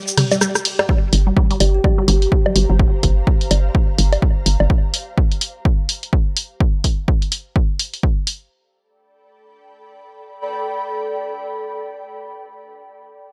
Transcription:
Already playing: G4
0.08 shaker
0.17 G3, cross-stick, open hi-hat, mid tom, ride
0.32 G3, open hi-hat, low woodblock, shaker
0.41 G3, cross-stick, shaker
0.55 cross-stick, shaker
0.65 open hi-hat, ride
0.79 G3, cross-stick, ride, low woodblock
0.89 G3 G4, kick
1.13 G1, open hi-hat
1.27 G3 C5
1.37 G3, kick
1.51 G3, open hi-hat
1.60 G1 G4, open hi-hat, low woodblock
1.69 A#5
1.74 G4
1.84 G3, kick, low woodblock
1.97 G3 F5
2.08 G1 G3 G4, open hi-hat
2.22 open hi-hat
2.32 kick
2.46 G3, low woodblock
2.56 G1 G3, open hi-hat
2.70 G1 G3
2.79 kick
3.03 G1, kick, open hi-hat
3.27 kick
3.41 open hi-hat
3.51 G1, open hi-hat, low woodblock
3.75 kick
3.98 G1, open hi-hat
4.13 open hi-hat, low woodblock
4.22 kick
4.46 G1, open hi-hat
4.60 G1, low woodblock
4.70 kick
4.94 open hi-hat
5.18 kick
5.32 open hi-hat
5.41 open hi-hat
5.65 kick
5.89 open hi-hat
6.03 open hi-hat
6.13 kick
6.37 open hi-hat
6.60 kick
6.84 kick, open hi-hat
7.08 kick
7.22 open hi-hat
7.32 open hi-hat
7.56 kick
7.79 open hi-hat
7.94 open hi-hat
8.03 kick
8.27 open hi-hat
8.51 A4
8.59 D5
8.67 G5
8.73 B5

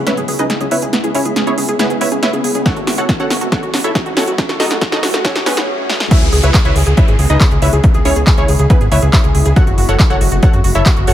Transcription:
Already playing: riser
0.07 C#4 E4 B4 C#5 E5, snare, closed hi-hat
0.17 G#1 G#4, closed hi-hat
0.28 C#2 B3 G#4, open hi-hat
0.39 C#2 C#4 D#4 G#4 B4 D#5, closed hi-hat
0.50 G#4, snare, closed hi-hat
0.61 C#2 C#4 G#4, closed hi-hat
0.71 C#2 B3 E4 B4 C#5 E5, open hi-hat
0.82 C#2 C#4 G#4, closed hi-hat
0.93 B3, snare, closed hi-hat
1.04 C#2 E4 G#4, closed hi-hat
1.14 C#2 C#4 E4 G#4 C#5, open hi-hat
1.25 C#2 E4 G#4, closed hi-hat
1.36 C#4 G#4, snare, closed hi-hat
1.47 C#2 B3 C#4 E4 G#4 C#5, closed hi-hat
1.58 C#2 C#4 G#4, open hi-hat
1.68 C#2 E4 G#4, closed hi-hat
1.79 B3 C#4 E4 G#4 B4, snare, closed hi-hat
1.90 G#1 G#4, closed hi-hat
2.01 C#2 B3 E4 B4 C#5 E5, open hi-hat
2.12 C#2 C#4 G#4, closed hi-hat
2.23 E4 B4 C#5 E5, snare, closed hi-hat
2.33 C#2 C#4 G#4, closed hi-hat
2.44 C#2 B3 G#4, open hi-hat
2.55 C#2 C#4 G#4, closed hi-hat
2.66 C#4 F#4 A4 C#5 F#5, kick, snare, closed hi-hat
2.76 F#1 F#4 A4, closed hi-hat
2.87 F#1 F#4, snare, open hi-hat
2.98 F#1 F#4 A4 C#5 F#5, closed hi-hat
3.09 F#4, kick, snare, closed hi-hat
3.20 F#1 C#4 F#4 A4 C#5 F#5, closed hi-hat
3.30 F#1 F#4, snare, open hi-hat
3.41 F#1 F#4 A4, closed hi-hat
3.52 F#4 A4 C#5 F#5, kick, snare, closed hi-hat
3.63 F#2 F#4, closed hi-hat
3.74 F#1 C#4 F#4, snare, open hi-hat
3.84 F#1 E4 F#4 A4 C#5 E5, closed hi-hat
3.95 F#4, kick, snare, closed hi-hat
4.06 F#1 F#4, closed hi-hat
4.17 F#1 C#4 F#4 A4 C#5 F#5, snare, open hi-hat
4.28 F#1 F#4, closed hi-hat
4.38 C#4, kick, snare, closed hi-hat
4.49 F#1 F#4 A4, snare, closed hi-hat
4.60 F#1 D#4 F#4 A4 D#5, snare, open hi-hat
4.71 F#1 F#4 A4, snare, closed hi-hat
4.81 F#4, kick, snare, closed hi-hat
4.92 F#1 C#4 D#4 F#4 A4 D#5, snare, closed hi-hat
5.03 F#1 F#4, snare, open hi-hat
5.14 F#1 F#4 A4, snare, closed hi-hat
5.25 C#4 F#4 A4 C#5, kick, snare, closed hi-hat, swell
5.35 F#2 F#4, snare, closed hi-hat
5.46 F#1 B3 C#4 F#4 B4, snare, open hi-hat
5.57 F#1 F#4 F#5, snare, closed hi-hat
5.90 snare
6.00 snare
6.11 E4 B4 C#5 E5, kick, closed hi-hat, crash, downlifter
6.22 C#2 G#4, closed hi-hat
6.33 C#2 G#4, open hi-hat
6.43 C#2 E4 B4 C#5 E5, closed hi-hat
6.54 G#4, kick, clap, closed hi-hat
6.65 C#2 E4 B4 C#5 E5, closed hi-hat
6.75 C#2 G#4, open hi-hat
6.86 C#2 G#4, closed hi-hat
6.97 E4 B4 C#5 E5, kick, closed hi-hat
7.08 G#1 G#4, closed hi-hat
7.19 C#2 G#4, open hi-hat
7.30 C#2 D#4 G#4 B4 D#5, closed hi-hat
7.40 G#4, kick, clap, closed hi-hat
7.51 C#2 G#4, closed hi-hat
7.62 C#2 E4 B4 C#5 E5, open hi-hat
7.73 C#2 G#4, closed hi-hat
7.84 kick, closed hi-hat
7.94 C#2 G#4, closed hi-hat
8.05 C#2 C#4 E4 G#4 C#5, open hi-hat
8.16 C#2 G#4, closed hi-hat
8.27 G#4, kick, clap, closed hi-hat
8.38 C#2 C#4 E4 G#4 C#5, closed hi-hat
8.48 C#2 G#4, open hi-hat
8.59 C#2 G#4, closed hi-hat
8.70 B3 E4 G#4 B4, kick, closed hi-hat
8.81 G#1 G#4, closed hi-hat
8.91 C#2 E4 B4 C#5 E5, open hi-hat
9.02 C#2 G#4, closed hi-hat
9.13 E4 B4 C#5 E5, kick, clap, closed hi-hat
9.24 C#2 G#4, closed hi-hat
9.35 C#2 G#4, open hi-hat
9.46 C#2 G#4, closed hi-hat
9.56 F#4 A4 C#5 F#5, kick, closed hi-hat
9.67 F#1 F#4, closed hi-hat
9.78 F#1 F#4, open hi-hat
9.89 F#1 F#4 A4 C#5 F#5, closed hi-hat
9.99 F#4, kick, clap, closed hi-hat
10.10 F#1 F#4 A4 C#5 F#5, closed hi-hat
10.21 F#1 F#4, open hi-hat
10.32 F#1 F#4, closed hi-hat
10.43 F#4 A4 C#5 F#5, kick, closed hi-hat
10.53 F#2 F#4, closed hi-hat
10.64 F#1 F#4, open hi-hat
10.75 F#1 E4 A4 C#5 E5, closed hi-hat
10.86 F#4, kick, clap, closed hi-hat
10.97 F#1 F#4, closed hi-hat
11.07 F#1 F#4 A4 C#5 F#5, open hi-hat

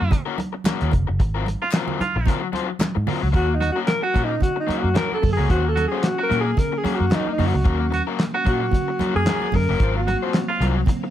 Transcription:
Already playing: F#4
0.00 F#2, muted overdriven electric guitar stroke
0.11 muted overdriven electric guitar stroke, kick, closed hi-hat, muted conga, low conga
0.26 A#3 C#4 F#4 A#4
0.38 muted overdriven electric guitar stroke, closed hi-hat, muted conga, high conga
0.53 muted overdriven electric guitar stroke
0.64 A#3 C#4 F#4 A#4, snare, clap, closed hi-hat, muted conga, high conga
0.81 D#2, closed hi-hat
0.91 F1, muted overdriven electric guitar stroke, kick, closed hi-hat, low conga
1.07 F#1, muted overdriven electric guitar stroke
1.20 G#1, muted overdriven electric guitar stroke, kick, closed hi-hat, muted conga
1.35 F#3 C4 F4 A#4
1.46 muted overdriven electric guitar stroke, closed hi-hat, muted conga, high conga
1.62 F4, muted overdriven electric guitar stroke
1.71 snare, clap
1.74 F#3 C4 F4 A#4, clap, closed hi-hat
1.88 low conga
2.00 F4, muted overdriven electric guitar stroke, muted fingered electric bass stroke, closed hi-hat, muted conga, high conga
2.16 A#1, muted overdriven electric guitar stroke
2.26 F#3 C4 F4 A#4, kick, closed hi-hat, low conga
2.41 muted overdriven electric guitar stroke
2.53 F#3 C4 F4 C5, closed hi-hat, high conga
2.68 muted overdriven electric guitar stroke
2.79 muted overdriven electric guitar stroke, snare, clap, closed hi-hat, muted conga, high conga
2.95 G#2, muted overdriven electric guitar stroke, high conga
3.07 F#3 C4 F4 A#4, open hi-hat, muted conga, low conga
3.21 C#2, muted overdriven electric guitar stroke
3.32 D#2 F#3 A#3 C#4 F#4 A#4 F5, kick, closed hi-hat
3.48 muted overdriven electric guitar stroke
3.54 D#4
3.60 F#4, muted overdriven electric guitar stroke, closed hi-hat, muted conga, high conga
3.72 F#4 A#4
3.76 A#3 C#4 F#4
3.87 A#4, snare, clap, closed hi-hat, muted conga
4.01 F#4, muted overdriven electric guitar stroke
4.14 A#2 A#3 C#4 F#4 A#4, kick, closed hi-hat, muted conga, high conga
4.24 D#4
4.30 muted overdriven electric guitar stroke
4.40 F#4, kick, closed hi-hat, low conga
4.56 D#4, muted overdriven electric guitar stroke
4.67 A#3 C#4 F#4 A#4, muted fingered electric bass stroke, closed hi-hat, muted conga, high conga
4.78 F#4, muted overdriven electric guitar stroke
4.84 F#2
4.94 A#3 C#4 F#4 A#4, snare, clap, closed hi-hat, high conga
5.12 A4, high conga
5.22 F#2, muted overdriven electric guitar stroke, kick, open hi-hat, muted conga, low conga
5.32 G#4
5.37 C#2 A#3 C#4 F#4 A#4
5.49 D#2 A#3 C#4 F#4 C5, kick, closed hi-hat, muted conga
5.64 muted overdriven electric guitar stroke
5.68 A4
5.76 F#4, muted overdriven electric guitar stroke, closed hi-hat, muted conga, high conga
5.88 G#4
5.92 A#3 C#4 F#4 C5
6.04 F#4, snare, clap, closed hi-hat, muted conga
6.18 F#4, muted overdriven electric guitar stroke
6.23 A#4
6.29 A#2 A#3 C#4 F#4 A#4, closed hi-hat, muted conga, high conga
6.41 G#4
6.45 muted overdriven electric guitar stroke
6.57 A#4, kick, closed hi-hat, muted conga, low conga
6.72 muted overdriven electric guitar stroke
6.78 G#4
6.84 A#3 C#4 F#4 A#4, muted fingered electric bass stroke, closed hi-hat, muted conga, high conga
6.95 F#4
6.99 F#2, muted overdriven electric guitar stroke
7.10 A#3 C#4 F#4 A#4, snare, clap, closed hi-hat, muted conga, high conga
7.15 D#4
7.27 muted overdriven electric guitar stroke, high conga
7.32 D#4
7.38 F#2 A#3 C#4 F#4 A#4, open hi-hat, muted conga, low conga
7.47 F#4
7.54 C#2, muted overdriven electric guitar stroke
7.65 D#2 A#3 C#4 F#4 A#4, kick, closed hi-hat
7.80 muted overdriven electric guitar stroke
7.91 F#4, muted overdriven electric guitar stroke, closed hi-hat, muted conga, high conga
8.07 A#3 C#4 F#4 A#4
8.19 snare, clap, closed hi-hat, muted conga
8.34 F#4, muted overdriven electric guitar stroke
8.45 A#2 A#3 C#4 F#4 A#4, kick, closed hi-hat, muted conga, high conga
8.61 muted overdriven electric guitar stroke
8.71 kick, closed hi-hat, low conga
8.88 muted overdriven electric guitar stroke
8.99 A#3 C#4 F#4 A#4, muted fingered electric bass stroke, closed hi-hat, muted conga, high conga
9.15 F#2 G#4, muted overdriven electric guitar stroke
9.26 A#3 C#4 F#4 A#4, snare, clap, closed hi-hat, muted conga, high conga
9.42 high conga
9.52 F#2 A#4, muted overdriven electric guitar stroke, kick, open hi-hat, muted conga, low conga
9.69 F#1 A#3 C#4 F#4 A#4
9.79 G#1 F#3 C4 F4 C5, kick, closed hi-hat, muted conga
9.96 F#4, muted overdriven electric guitar stroke
10.07 F#4, muted overdriven electric guitar stroke, closed hi-hat, muted conga, high conga
10.22 F#3 C4 F4 C5
10.34 snare, clap, closed hi-hat
10.48 F4, muted overdriven electric guitar stroke
10.60 C2 F#3 C4 F4 A#4, closed hi-hat, muted conga, high conga
10.76 muted overdriven electric guitar stroke
10.86 muted overdriven electric guitar stroke, kick, closed hi-hat, muted conga, low conga
11.04 muted overdriven electric guitar stroke

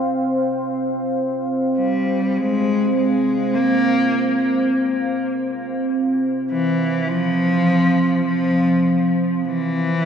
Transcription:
Already playing: C4 C5 F5
1.77 G3
2.38 G#3
2.96 G#3
3.54 A#3
6.51 E3
7.08 F3
8.26 F3
9.46 E3

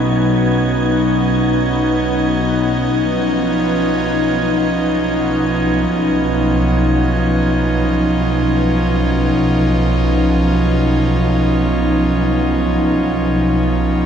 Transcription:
Already playing: B1 B2 F#3 B3 C#4 D#4 G#6
2.94 B1 F3
3.05 C#4

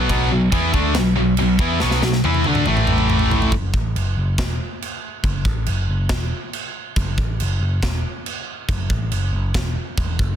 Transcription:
0.09 B1 B2 F#3 B3, kick, crash
0.31 B1 B2 F#3
0.52 E2 E3 B3 E4, kick, crash
0.74 D2 D3 A3 D4, kick
0.95 B1 B2 F#3, snare, crash
1.16 B1 B2 F#3
1.37 B2 F#3, crash
1.41 B1
1.59 E2 E3 B3 E4, kick
1.80 B1 B2 F#3 B3, snare
1.91 snare
2.02 B1 B2 F#3, snare
2.13 snare
2.24 E2 E3 B3 E4, high tom
2.34 high tom
2.44 D2 D3 A3 D4, high tom
2.55 mid tom
2.66 A1 A2 E3 A3, mid tom
2.77 mid tom
2.87 mid tom
2.98 mid tom
3.10 mid tom
3.19 floor tom
3.31 floor tom
3.42 floor tom
3.52 F#1, kick, china
3.74 A1, kick
3.95 F#1, china
4.17 F#1
4.38 E1, kick, snare, china
4.82 china
5.24 F#1, kick, china
5.45 A1, kick
5.66 F#1, china
5.89 F#1
6.09 E1, kick, snare, china
6.53 china
6.96 F#1, kick, china
7.18 A1, kick
7.40 F#1, china
7.61 F#1
7.82 E1, kick, snare, china
8.26 china
8.69 F#1, kick, china
8.90 A1, kick
9.11 F#1, china
9.33 F#1
9.54 E1, kick, snare, china
9.97 E1, kick, china
10.19 F#1, kick

